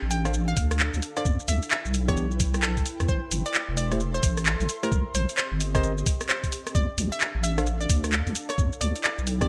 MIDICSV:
0, 0, Header, 1, 6, 480
1, 0, Start_track
1, 0, Tempo, 458015
1, 1314, Time_signature, 4, 2, 24, 8
1, 9939, End_track
2, 0, Start_track
2, 0, Title_t, "Synth pluck"
2, 0, Program_c, 0, 84
2, 111, Note_on_c, 0, 79, 98
2, 352, Note_off_c, 0, 79, 0
2, 502, Note_on_c, 0, 77, 99
2, 743, Note_off_c, 0, 77, 0
2, 1222, Note_on_c, 0, 74, 94
2, 1463, Note_off_c, 0, 74, 0
2, 1554, Note_on_c, 0, 76, 91
2, 1734, Note_off_c, 0, 76, 0
2, 1795, Note_on_c, 0, 76, 93
2, 2034, Note_off_c, 0, 76, 0
2, 2185, Note_on_c, 0, 73, 95
2, 2424, Note_off_c, 0, 73, 0
2, 2756, Note_on_c, 0, 69, 100
2, 3094, Note_off_c, 0, 69, 0
2, 3233, Note_on_c, 0, 72, 98
2, 3473, Note_off_c, 0, 72, 0
2, 3624, Note_on_c, 0, 74, 97
2, 3864, Note_off_c, 0, 74, 0
2, 3951, Note_on_c, 0, 74, 99
2, 4192, Note_off_c, 0, 74, 0
2, 4342, Note_on_c, 0, 72, 98
2, 4583, Note_off_c, 0, 72, 0
2, 5064, Note_on_c, 0, 70, 91
2, 5304, Note_off_c, 0, 70, 0
2, 5395, Note_on_c, 0, 72, 94
2, 5575, Note_off_c, 0, 72, 0
2, 5633, Note_on_c, 0, 72, 94
2, 5873, Note_off_c, 0, 72, 0
2, 6023, Note_on_c, 0, 72, 97
2, 6263, Note_off_c, 0, 72, 0
2, 6592, Note_on_c, 0, 72, 95
2, 6933, Note_off_c, 0, 72, 0
2, 7073, Note_on_c, 0, 74, 100
2, 7313, Note_off_c, 0, 74, 0
2, 7462, Note_on_c, 0, 76, 99
2, 7703, Note_off_c, 0, 76, 0
2, 7791, Note_on_c, 0, 76, 99
2, 8032, Note_off_c, 0, 76, 0
2, 8181, Note_on_c, 0, 74, 93
2, 8422, Note_off_c, 0, 74, 0
2, 8897, Note_on_c, 0, 73, 97
2, 9140, Note_off_c, 0, 73, 0
2, 9231, Note_on_c, 0, 74, 92
2, 9413, Note_off_c, 0, 74, 0
2, 9472, Note_on_c, 0, 74, 97
2, 9713, Note_off_c, 0, 74, 0
2, 9865, Note_on_c, 0, 74, 95
2, 9939, Note_off_c, 0, 74, 0
2, 9939, End_track
3, 0, Start_track
3, 0, Title_t, "Ambient pad"
3, 0, Program_c, 1, 92
3, 0, Note_on_c, 1, 62, 82
3, 0, Note_on_c, 1, 69, 73
3, 0, Note_on_c, 1, 77, 78
3, 1312, Note_on_c, 1, 64, 90
3, 1315, Note_off_c, 1, 77, 0
3, 1601, Note_on_c, 1, 79, 95
3, 1671, Note_on_c, 1, 71, 90
3, 1957, Note_off_c, 1, 62, 0
3, 2026, Note_off_c, 1, 69, 0
3, 3234, Note_off_c, 1, 71, 0
3, 3234, Note_on_c, 1, 69, 86
3, 3427, Note_on_c, 1, 84, 98
3, 3446, Note_on_c, 1, 76, 96
3, 4013, Note_off_c, 1, 64, 0
3, 4014, Note_off_c, 1, 79, 0
3, 5153, Note_off_c, 1, 76, 0
3, 5153, Note_on_c, 1, 60, 79
3, 5317, Note_on_c, 1, 67, 81
3, 5349, Note_on_c, 1, 75, 99
3, 5837, Note_off_c, 1, 84, 0
3, 5838, Note_off_c, 1, 69, 0
3, 6834, Note_off_c, 1, 75, 0
3, 6836, Note_on_c, 1, 62, 79
3, 7092, Note_on_c, 1, 69, 92
3, 7370, Note_on_c, 1, 77, 85
3, 7722, Note_off_c, 1, 60, 0
3, 7722, Note_off_c, 1, 67, 0
3, 8994, Note_off_c, 1, 77, 0
3, 8994, Note_on_c, 1, 64, 85
3, 9167, Note_on_c, 1, 71, 82
3, 9235, Note_on_c, 1, 79, 96
3, 9695, Note_off_c, 1, 62, 0
3, 9775, Note_off_c, 1, 69, 0
3, 9939, Note_off_c, 1, 64, 0
3, 9939, Note_off_c, 1, 71, 0
3, 9939, Note_off_c, 1, 79, 0
3, 9939, End_track
4, 0, Start_track
4, 0, Title_t, "Tine electric piano"
4, 0, Program_c, 2, 4
4, 264, Note_on_c, 2, 62, 80
4, 264, Note_on_c, 2, 69, 73
4, 264, Note_on_c, 2, 72, 74
4, 264, Note_on_c, 2, 77, 90
4, 351, Note_off_c, 2, 62, 0
4, 351, Note_off_c, 2, 69, 0
4, 351, Note_off_c, 2, 72, 0
4, 351, Note_off_c, 2, 77, 0
4, 1224, Note_on_c, 2, 77, 89
4, 1225, Note_on_c, 2, 62, 83
4, 1225, Note_on_c, 2, 69, 76
4, 1225, Note_on_c, 2, 72, 79
4, 1303, Note_off_c, 2, 62, 0
4, 1303, Note_off_c, 2, 69, 0
4, 1303, Note_off_c, 2, 77, 0
4, 1304, Note_off_c, 2, 72, 0
4, 2182, Note_on_c, 2, 52, 92
4, 2182, Note_on_c, 2, 59, 81
4, 2182, Note_on_c, 2, 62, 83
4, 2183, Note_on_c, 2, 67, 101
4, 2355, Note_off_c, 2, 52, 0
4, 2356, Note_off_c, 2, 59, 0
4, 2356, Note_off_c, 2, 62, 0
4, 2356, Note_off_c, 2, 67, 0
4, 4105, Note_on_c, 2, 57, 80
4, 4105, Note_on_c, 2, 64, 71
4, 4105, Note_on_c, 2, 67, 73
4, 4105, Note_on_c, 2, 72, 89
4, 4191, Note_off_c, 2, 57, 0
4, 4191, Note_off_c, 2, 64, 0
4, 4191, Note_off_c, 2, 67, 0
4, 4191, Note_off_c, 2, 72, 0
4, 5064, Note_on_c, 2, 57, 81
4, 5064, Note_on_c, 2, 67, 76
4, 5064, Note_on_c, 2, 72, 92
4, 5065, Note_on_c, 2, 64, 75
4, 5143, Note_off_c, 2, 57, 0
4, 5143, Note_off_c, 2, 64, 0
4, 5143, Note_off_c, 2, 67, 0
4, 5143, Note_off_c, 2, 72, 0
4, 6023, Note_on_c, 2, 60, 91
4, 6023, Note_on_c, 2, 70, 84
4, 6023, Note_on_c, 2, 75, 100
4, 6024, Note_on_c, 2, 67, 81
4, 6196, Note_off_c, 2, 60, 0
4, 6196, Note_off_c, 2, 67, 0
4, 6196, Note_off_c, 2, 70, 0
4, 6196, Note_off_c, 2, 75, 0
4, 7943, Note_on_c, 2, 62, 82
4, 7943, Note_on_c, 2, 69, 77
4, 7943, Note_on_c, 2, 72, 71
4, 7943, Note_on_c, 2, 77, 88
4, 8030, Note_off_c, 2, 62, 0
4, 8030, Note_off_c, 2, 69, 0
4, 8030, Note_off_c, 2, 72, 0
4, 8030, Note_off_c, 2, 77, 0
4, 9862, Note_on_c, 2, 52, 90
4, 9862, Note_on_c, 2, 59, 83
4, 9862, Note_on_c, 2, 62, 85
4, 9862, Note_on_c, 2, 67, 101
4, 9939, Note_off_c, 2, 52, 0
4, 9939, Note_off_c, 2, 59, 0
4, 9939, Note_off_c, 2, 62, 0
4, 9939, Note_off_c, 2, 67, 0
4, 9939, End_track
5, 0, Start_track
5, 0, Title_t, "Wobble bass"
5, 0, Program_c, 3, 39
5, 25, Note_on_c, 3, 33, 99
5, 565, Note_off_c, 3, 33, 0
5, 593, Note_on_c, 3, 38, 100
5, 934, Note_off_c, 3, 38, 0
5, 984, Note_on_c, 3, 38, 105
5, 1055, Note_off_c, 3, 38, 0
5, 1314, Note_on_c, 3, 40, 97
5, 1434, Note_off_c, 3, 40, 0
5, 1552, Note_on_c, 3, 38, 98
5, 1673, Note_off_c, 3, 38, 0
5, 1943, Note_on_c, 3, 35, 102
5, 2267, Note_off_c, 3, 35, 0
5, 2273, Note_on_c, 3, 35, 101
5, 2964, Note_off_c, 3, 35, 0
5, 3146, Note_on_c, 3, 40, 91
5, 3216, Note_off_c, 3, 40, 0
5, 3234, Note_on_c, 3, 33, 100
5, 3354, Note_off_c, 3, 33, 0
5, 3472, Note_on_c, 3, 31, 95
5, 3593, Note_off_c, 3, 31, 0
5, 3863, Note_on_c, 3, 28, 101
5, 4403, Note_off_c, 3, 28, 0
5, 4434, Note_on_c, 3, 33, 99
5, 4775, Note_off_c, 3, 33, 0
5, 4823, Note_on_c, 3, 33, 109
5, 4894, Note_off_c, 3, 33, 0
5, 5153, Note_on_c, 3, 36, 103
5, 5273, Note_off_c, 3, 36, 0
5, 5391, Note_on_c, 3, 34, 98
5, 5512, Note_off_c, 3, 34, 0
5, 5782, Note_on_c, 3, 31, 100
5, 6323, Note_off_c, 3, 31, 0
5, 7074, Note_on_c, 3, 38, 96
5, 7193, Note_off_c, 3, 38, 0
5, 7311, Note_on_c, 3, 36, 96
5, 7432, Note_off_c, 3, 36, 0
5, 7703, Note_on_c, 3, 33, 100
5, 8243, Note_off_c, 3, 33, 0
5, 8274, Note_on_c, 3, 38, 101
5, 8615, Note_off_c, 3, 38, 0
5, 8663, Note_on_c, 3, 38, 105
5, 8734, Note_off_c, 3, 38, 0
5, 8993, Note_on_c, 3, 40, 100
5, 9113, Note_off_c, 3, 40, 0
5, 9235, Note_on_c, 3, 38, 100
5, 9354, Note_off_c, 3, 38, 0
5, 9626, Note_on_c, 3, 35, 102
5, 9939, Note_off_c, 3, 35, 0
5, 9939, End_track
6, 0, Start_track
6, 0, Title_t, "Drums"
6, 113, Note_on_c, 9, 46, 100
6, 113, Note_on_c, 9, 82, 75
6, 218, Note_off_c, 9, 46, 0
6, 218, Note_off_c, 9, 82, 0
6, 264, Note_on_c, 9, 37, 71
6, 264, Note_on_c, 9, 42, 63
6, 264, Note_on_c, 9, 82, 31
6, 354, Note_off_c, 9, 42, 0
6, 354, Note_off_c, 9, 82, 0
6, 354, Note_on_c, 9, 42, 36
6, 354, Note_on_c, 9, 82, 42
6, 369, Note_off_c, 9, 37, 0
6, 459, Note_off_c, 9, 42, 0
6, 459, Note_off_c, 9, 82, 0
6, 505, Note_on_c, 9, 82, 29
6, 593, Note_off_c, 9, 82, 0
6, 593, Note_on_c, 9, 36, 110
6, 593, Note_on_c, 9, 46, 105
6, 593, Note_on_c, 9, 82, 78
6, 698, Note_off_c, 9, 36, 0
6, 698, Note_off_c, 9, 46, 0
6, 698, Note_off_c, 9, 82, 0
6, 745, Note_on_c, 9, 37, 71
6, 745, Note_on_c, 9, 42, 63
6, 745, Note_on_c, 9, 82, 30
6, 834, Note_off_c, 9, 82, 0
6, 834, Note_on_c, 9, 39, 126
6, 834, Note_on_c, 9, 82, 43
6, 850, Note_off_c, 9, 37, 0
6, 850, Note_off_c, 9, 42, 0
6, 939, Note_off_c, 9, 39, 0
6, 939, Note_off_c, 9, 82, 0
6, 985, Note_on_c, 9, 42, 52
6, 985, Note_on_c, 9, 82, 30
6, 1073, Note_off_c, 9, 82, 0
6, 1073, Note_on_c, 9, 46, 107
6, 1073, Note_on_c, 9, 82, 77
6, 1090, Note_off_c, 9, 42, 0
6, 1178, Note_off_c, 9, 46, 0
6, 1178, Note_off_c, 9, 82, 0
6, 1223, Note_on_c, 9, 37, 70
6, 1223, Note_on_c, 9, 42, 63
6, 1223, Note_on_c, 9, 82, 30
6, 1313, Note_off_c, 9, 82, 0
6, 1313, Note_on_c, 9, 36, 125
6, 1313, Note_on_c, 9, 82, 44
6, 1328, Note_off_c, 9, 37, 0
6, 1328, Note_off_c, 9, 42, 0
6, 1418, Note_off_c, 9, 36, 0
6, 1418, Note_off_c, 9, 82, 0
6, 1464, Note_on_c, 9, 82, 31
6, 1552, Note_off_c, 9, 82, 0
6, 1552, Note_on_c, 9, 46, 99
6, 1552, Note_on_c, 9, 82, 76
6, 1657, Note_off_c, 9, 46, 0
6, 1657, Note_off_c, 9, 82, 0
6, 1704, Note_on_c, 9, 42, 69
6, 1704, Note_on_c, 9, 82, 34
6, 1793, Note_off_c, 9, 82, 0
6, 1793, Note_on_c, 9, 39, 125
6, 1793, Note_on_c, 9, 82, 43
6, 1809, Note_off_c, 9, 42, 0
6, 1898, Note_off_c, 9, 39, 0
6, 1898, Note_off_c, 9, 82, 0
6, 1944, Note_on_c, 9, 82, 31
6, 2033, Note_off_c, 9, 82, 0
6, 2033, Note_on_c, 9, 46, 102
6, 2033, Note_on_c, 9, 82, 78
6, 2138, Note_off_c, 9, 46, 0
6, 2138, Note_off_c, 9, 82, 0
6, 2184, Note_on_c, 9, 36, 113
6, 2184, Note_on_c, 9, 37, 66
6, 2184, Note_on_c, 9, 42, 66
6, 2184, Note_on_c, 9, 82, 32
6, 2273, Note_off_c, 9, 42, 0
6, 2273, Note_off_c, 9, 82, 0
6, 2273, Note_on_c, 9, 42, 35
6, 2273, Note_on_c, 9, 82, 43
6, 2289, Note_off_c, 9, 36, 0
6, 2289, Note_off_c, 9, 37, 0
6, 2378, Note_off_c, 9, 42, 0
6, 2378, Note_off_c, 9, 82, 0
6, 2424, Note_on_c, 9, 82, 30
6, 2513, Note_off_c, 9, 82, 0
6, 2513, Note_on_c, 9, 46, 104
6, 2513, Note_on_c, 9, 82, 77
6, 2514, Note_on_c, 9, 36, 113
6, 2618, Note_off_c, 9, 46, 0
6, 2618, Note_off_c, 9, 82, 0
6, 2619, Note_off_c, 9, 36, 0
6, 2664, Note_on_c, 9, 37, 65
6, 2664, Note_on_c, 9, 42, 64
6, 2664, Note_on_c, 9, 82, 32
6, 2754, Note_off_c, 9, 82, 0
6, 2754, Note_on_c, 9, 39, 124
6, 2754, Note_on_c, 9, 82, 44
6, 2769, Note_off_c, 9, 37, 0
6, 2769, Note_off_c, 9, 42, 0
6, 2858, Note_off_c, 9, 39, 0
6, 2858, Note_off_c, 9, 82, 0
6, 2904, Note_on_c, 9, 36, 65
6, 2904, Note_on_c, 9, 42, 52
6, 2904, Note_on_c, 9, 82, 30
6, 2993, Note_off_c, 9, 82, 0
6, 2993, Note_on_c, 9, 46, 106
6, 2993, Note_on_c, 9, 82, 77
6, 3009, Note_off_c, 9, 36, 0
6, 3009, Note_off_c, 9, 42, 0
6, 3098, Note_off_c, 9, 46, 0
6, 3098, Note_off_c, 9, 82, 0
6, 3145, Note_on_c, 9, 37, 65
6, 3145, Note_on_c, 9, 42, 66
6, 3145, Note_on_c, 9, 82, 31
6, 3233, Note_off_c, 9, 82, 0
6, 3233, Note_on_c, 9, 36, 121
6, 3233, Note_on_c, 9, 82, 44
6, 3250, Note_off_c, 9, 37, 0
6, 3250, Note_off_c, 9, 42, 0
6, 3338, Note_off_c, 9, 36, 0
6, 3338, Note_off_c, 9, 82, 0
6, 3473, Note_on_c, 9, 46, 102
6, 3473, Note_on_c, 9, 82, 80
6, 3578, Note_off_c, 9, 46, 0
6, 3578, Note_off_c, 9, 82, 0
6, 3624, Note_on_c, 9, 42, 69
6, 3624, Note_on_c, 9, 82, 34
6, 3713, Note_off_c, 9, 82, 0
6, 3713, Note_on_c, 9, 39, 122
6, 3713, Note_on_c, 9, 82, 46
6, 3728, Note_off_c, 9, 42, 0
6, 3818, Note_off_c, 9, 39, 0
6, 3818, Note_off_c, 9, 82, 0
6, 3952, Note_on_c, 9, 46, 101
6, 3952, Note_on_c, 9, 82, 78
6, 4057, Note_off_c, 9, 46, 0
6, 4057, Note_off_c, 9, 82, 0
6, 4103, Note_on_c, 9, 37, 63
6, 4103, Note_on_c, 9, 42, 67
6, 4103, Note_on_c, 9, 82, 33
6, 4194, Note_off_c, 9, 42, 0
6, 4194, Note_off_c, 9, 82, 0
6, 4194, Note_on_c, 9, 42, 37
6, 4194, Note_on_c, 9, 82, 44
6, 4208, Note_off_c, 9, 37, 0
6, 4298, Note_off_c, 9, 42, 0
6, 4298, Note_off_c, 9, 82, 0
6, 4345, Note_on_c, 9, 82, 30
6, 4433, Note_off_c, 9, 82, 0
6, 4433, Note_on_c, 9, 46, 105
6, 4433, Note_on_c, 9, 82, 81
6, 4434, Note_on_c, 9, 36, 108
6, 4538, Note_off_c, 9, 36, 0
6, 4538, Note_off_c, 9, 46, 0
6, 4538, Note_off_c, 9, 82, 0
6, 4584, Note_on_c, 9, 37, 63
6, 4584, Note_on_c, 9, 42, 69
6, 4584, Note_on_c, 9, 82, 34
6, 4674, Note_off_c, 9, 82, 0
6, 4674, Note_on_c, 9, 39, 122
6, 4674, Note_on_c, 9, 82, 47
6, 4689, Note_off_c, 9, 37, 0
6, 4689, Note_off_c, 9, 42, 0
6, 4779, Note_off_c, 9, 39, 0
6, 4779, Note_off_c, 9, 82, 0
6, 4825, Note_on_c, 9, 42, 54
6, 4825, Note_on_c, 9, 82, 31
6, 4914, Note_off_c, 9, 82, 0
6, 4914, Note_on_c, 9, 46, 106
6, 4914, Note_on_c, 9, 82, 79
6, 4930, Note_off_c, 9, 42, 0
6, 5019, Note_off_c, 9, 46, 0
6, 5019, Note_off_c, 9, 82, 0
6, 5065, Note_on_c, 9, 37, 64
6, 5065, Note_on_c, 9, 42, 65
6, 5065, Note_on_c, 9, 82, 32
6, 5154, Note_off_c, 9, 82, 0
6, 5154, Note_on_c, 9, 36, 120
6, 5154, Note_on_c, 9, 82, 46
6, 5170, Note_off_c, 9, 37, 0
6, 5170, Note_off_c, 9, 42, 0
6, 5258, Note_off_c, 9, 36, 0
6, 5259, Note_off_c, 9, 82, 0
6, 5394, Note_on_c, 9, 46, 105
6, 5394, Note_on_c, 9, 82, 76
6, 5499, Note_off_c, 9, 46, 0
6, 5499, Note_off_c, 9, 82, 0
6, 5546, Note_on_c, 9, 42, 72
6, 5546, Note_on_c, 9, 82, 35
6, 5635, Note_off_c, 9, 82, 0
6, 5635, Note_on_c, 9, 39, 114
6, 5635, Note_on_c, 9, 82, 45
6, 5651, Note_off_c, 9, 42, 0
6, 5740, Note_off_c, 9, 39, 0
6, 5740, Note_off_c, 9, 82, 0
6, 5874, Note_on_c, 9, 46, 107
6, 5874, Note_on_c, 9, 82, 80
6, 5979, Note_off_c, 9, 46, 0
6, 5979, Note_off_c, 9, 82, 0
6, 6024, Note_on_c, 9, 36, 102
6, 6025, Note_on_c, 9, 37, 65
6, 6025, Note_on_c, 9, 42, 71
6, 6025, Note_on_c, 9, 82, 34
6, 6115, Note_off_c, 9, 42, 0
6, 6115, Note_off_c, 9, 82, 0
6, 6115, Note_on_c, 9, 42, 38
6, 6115, Note_on_c, 9, 82, 44
6, 6129, Note_off_c, 9, 36, 0
6, 6130, Note_off_c, 9, 37, 0
6, 6220, Note_off_c, 9, 42, 0
6, 6220, Note_off_c, 9, 82, 0
6, 6265, Note_on_c, 9, 82, 31
6, 6354, Note_on_c, 9, 36, 108
6, 6355, Note_off_c, 9, 82, 0
6, 6355, Note_on_c, 9, 46, 108
6, 6355, Note_on_c, 9, 82, 79
6, 6459, Note_off_c, 9, 36, 0
6, 6459, Note_off_c, 9, 46, 0
6, 6459, Note_off_c, 9, 82, 0
6, 6506, Note_on_c, 9, 37, 64
6, 6506, Note_on_c, 9, 42, 71
6, 6506, Note_on_c, 9, 82, 34
6, 6595, Note_off_c, 9, 82, 0
6, 6595, Note_on_c, 9, 39, 118
6, 6595, Note_on_c, 9, 82, 43
6, 6610, Note_off_c, 9, 37, 0
6, 6610, Note_off_c, 9, 42, 0
6, 6700, Note_off_c, 9, 39, 0
6, 6700, Note_off_c, 9, 82, 0
6, 6744, Note_on_c, 9, 36, 62
6, 6746, Note_on_c, 9, 42, 56
6, 6746, Note_on_c, 9, 82, 33
6, 6835, Note_off_c, 9, 82, 0
6, 6835, Note_on_c, 9, 46, 108
6, 6835, Note_on_c, 9, 82, 81
6, 6849, Note_off_c, 9, 36, 0
6, 6851, Note_off_c, 9, 42, 0
6, 6940, Note_off_c, 9, 46, 0
6, 6940, Note_off_c, 9, 82, 0
6, 6986, Note_on_c, 9, 37, 65
6, 6986, Note_on_c, 9, 42, 70
6, 6986, Note_on_c, 9, 82, 33
6, 7074, Note_on_c, 9, 36, 120
6, 7075, Note_off_c, 9, 82, 0
6, 7075, Note_on_c, 9, 82, 43
6, 7091, Note_off_c, 9, 37, 0
6, 7091, Note_off_c, 9, 42, 0
6, 7179, Note_off_c, 9, 36, 0
6, 7180, Note_off_c, 9, 82, 0
6, 7314, Note_on_c, 9, 46, 111
6, 7314, Note_on_c, 9, 82, 77
6, 7419, Note_off_c, 9, 46, 0
6, 7419, Note_off_c, 9, 82, 0
6, 7465, Note_on_c, 9, 42, 74
6, 7465, Note_on_c, 9, 82, 35
6, 7554, Note_off_c, 9, 82, 0
6, 7554, Note_on_c, 9, 39, 110
6, 7554, Note_on_c, 9, 82, 45
6, 7570, Note_off_c, 9, 42, 0
6, 7659, Note_off_c, 9, 39, 0
6, 7659, Note_off_c, 9, 82, 0
6, 7794, Note_on_c, 9, 46, 106
6, 7794, Note_on_c, 9, 82, 78
6, 7898, Note_off_c, 9, 46, 0
6, 7898, Note_off_c, 9, 82, 0
6, 7944, Note_on_c, 9, 37, 68
6, 7944, Note_on_c, 9, 42, 69
6, 7944, Note_on_c, 9, 82, 32
6, 8034, Note_off_c, 9, 42, 0
6, 8034, Note_off_c, 9, 82, 0
6, 8034, Note_on_c, 9, 42, 39
6, 8034, Note_on_c, 9, 82, 44
6, 8049, Note_off_c, 9, 37, 0
6, 8138, Note_off_c, 9, 42, 0
6, 8138, Note_off_c, 9, 82, 0
6, 8185, Note_on_c, 9, 82, 30
6, 8273, Note_on_c, 9, 36, 103
6, 8274, Note_off_c, 9, 82, 0
6, 8274, Note_on_c, 9, 46, 111
6, 8274, Note_on_c, 9, 82, 81
6, 8378, Note_off_c, 9, 36, 0
6, 8379, Note_off_c, 9, 46, 0
6, 8379, Note_off_c, 9, 82, 0
6, 8425, Note_on_c, 9, 37, 64
6, 8425, Note_on_c, 9, 42, 71
6, 8425, Note_on_c, 9, 82, 34
6, 8515, Note_off_c, 9, 82, 0
6, 8515, Note_on_c, 9, 39, 114
6, 8515, Note_on_c, 9, 82, 44
6, 8530, Note_off_c, 9, 37, 0
6, 8530, Note_off_c, 9, 42, 0
6, 8620, Note_off_c, 9, 39, 0
6, 8620, Note_off_c, 9, 82, 0
6, 8665, Note_on_c, 9, 42, 57
6, 8665, Note_on_c, 9, 82, 30
6, 8754, Note_off_c, 9, 82, 0
6, 8754, Note_on_c, 9, 46, 111
6, 8754, Note_on_c, 9, 82, 79
6, 8770, Note_off_c, 9, 42, 0
6, 8859, Note_off_c, 9, 46, 0
6, 8859, Note_off_c, 9, 82, 0
6, 8905, Note_on_c, 9, 37, 64
6, 8905, Note_on_c, 9, 42, 71
6, 8905, Note_on_c, 9, 82, 33
6, 8993, Note_on_c, 9, 36, 120
6, 8995, Note_off_c, 9, 82, 0
6, 8995, Note_on_c, 9, 82, 42
6, 9010, Note_off_c, 9, 37, 0
6, 9010, Note_off_c, 9, 42, 0
6, 9098, Note_off_c, 9, 36, 0
6, 9100, Note_off_c, 9, 82, 0
6, 9145, Note_on_c, 9, 82, 30
6, 9235, Note_off_c, 9, 82, 0
6, 9235, Note_on_c, 9, 46, 112
6, 9235, Note_on_c, 9, 82, 75
6, 9340, Note_off_c, 9, 46, 0
6, 9340, Note_off_c, 9, 82, 0
6, 9385, Note_on_c, 9, 42, 71
6, 9385, Note_on_c, 9, 82, 33
6, 9474, Note_off_c, 9, 82, 0
6, 9474, Note_on_c, 9, 39, 111
6, 9474, Note_on_c, 9, 82, 42
6, 9490, Note_off_c, 9, 42, 0
6, 9579, Note_off_c, 9, 39, 0
6, 9579, Note_off_c, 9, 82, 0
6, 9625, Note_on_c, 9, 82, 29
6, 9713, Note_off_c, 9, 82, 0
6, 9713, Note_on_c, 9, 46, 116
6, 9713, Note_on_c, 9, 82, 72
6, 9818, Note_off_c, 9, 46, 0
6, 9818, Note_off_c, 9, 82, 0
6, 9864, Note_on_c, 9, 36, 101
6, 9864, Note_on_c, 9, 37, 70
6, 9864, Note_on_c, 9, 42, 68
6, 9864, Note_on_c, 9, 82, 31
6, 9939, Note_off_c, 9, 36, 0
6, 9939, Note_off_c, 9, 37, 0
6, 9939, Note_off_c, 9, 42, 0
6, 9939, Note_off_c, 9, 82, 0
6, 9939, End_track
0, 0, End_of_file